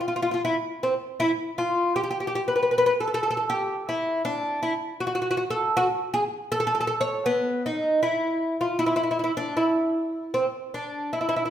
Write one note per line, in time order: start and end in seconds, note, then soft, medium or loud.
0.01 0.06 F4 medium
0.08 0.14 F4 medium
0.16 0.21 F4 medium
0.22 0.28 F4 medium
0.31 0.33 F4 medium
0.31 0.41 F4 medium
0.45 0.55 E4 medium
0.83 0.93 C4 medium
1.20 1.30 E4 medium
1.58 1.92 F4 medium
1.96 2.02 G4 medium
2.04 2.09 G4 medium
2.11 2.17 G4 medium
2.20 2.26 G4 medium
2.27 2.33 G4 medium
2.35 2.40 G4 medium
2.48 2.54 B4 medium
2.56 2.61 B4 medium
2.63 2.68 B4 medium
2.71 2.76 B4 medium
2.78 2.83 B4 medium
2.86 2.91 B4 medium
3.00 3.06 A4 medium
3.07 3.13 A4 soft
3.14 3.20 A4 medium
3.23 3.28 A4 medium
3.30 3.35 A4 medium
3.37 3.42 A4 medium
3.50 3.83 G4 medium
3.89 4.21 E4 medium
4.25 4.62 D4 medium
4.63 4.72 E4 medium
5.00 5.06 F#4 medium
5.07 5.13 F#4 medium
5.15 5.21 F#4 medium
5.22 5.28 F#4 medium
5.31 5.36 F#4 medium
5.37 5.43 F#4 medium
5.50 5.74 A4 medium
5.77 5.86 F#4 loud
6.14 6.23 G#4 medium
6.52 6.57 A4 loud
6.60 6.65 A4 medium
6.67 6.73 A4 medium
6.75 6.79 A4 medium
6.81 6.86 A4 medium
6.87 6.94 A4 medium
7.01 7.24 C#5 medium
7.26 7.62 B3 medium
7.66 8.02 D#4 medium
8.03 8.56 E4 medium
8.61 8.78 F4 medium
8.79 8.85 E4 medium
8.86 8.93 E4 medium
8.96 9.02 E4 medium
9.03 9.09 E4 soft
9.11 9.17 E4 medium
9.19 9.22 E4 soft
9.24 9.31 E4 medium
9.37 9.54 D4 medium
9.57 10.34 E4 medium
10.34 10.45 C4 medium
10.74 11.10 D4 medium
11.13 11.20 E4 medium
11.21 11.28 E4 soft
11.29 11.35 E4 medium
11.36 11.43 E4 medium
11.45 11.50 E4 medium